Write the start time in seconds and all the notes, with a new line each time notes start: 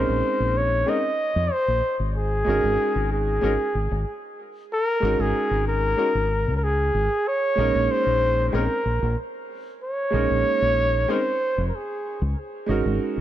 Already playing: G#3 C4 C#4 D#4 A#4 C5
0.08 A#1
0.40 A#1
0.57 C#5
0.86 G#3 C4 C#4 D#4 A#4 D#5
1.36 F2
1.52 C5
1.68 A#1
2.00 G#1
2.16 G#4
2.45 G#1 G#3 C#4 D#4 F#4
2.49 A#4
2.64 G#1
2.95 G#1
3.12 G#4
3.41 G#1 G#3 C#4 D#4 F#4 A#4
3.75 G#1
3.91 G#1
4.73 A#4
5.00 G#1 G#3 C#4 D#4 F#4
5.05 A#4
5.19 G#1 G#4
5.51 G#1
5.68 A#4
5.97 G#3 C#4 D#4 F#4 A#4
6.15 G#1
6.47 C#2
6.57 A#4
6.64 G#4
6.94 G#1
7.28 C#5
7.55 A#1 G#3 A#3 C#4 D#4
7.60 A#4
7.75 A#1
7.91 C5
8.06 A#1
8.48 G#3 C5
8.53 A#1 C4 C#4 D#4 A#4
8.86 A#1
9.02 A#1
9.83 C#5
10.10 A#1 G#3 A#3 C#4 D#4
10.15 A#4
10.30 A#1
10.62 A#1
11.08 G#3 C4 C#4 D#4 A#4 C5
11.58 F1
11.68 A#4
11.75 G#4
12.22 C#2
12.66 G#1 G#3 C#4 D#4 F#4
12.71 A#4
12.85 G#1
13.17 G#1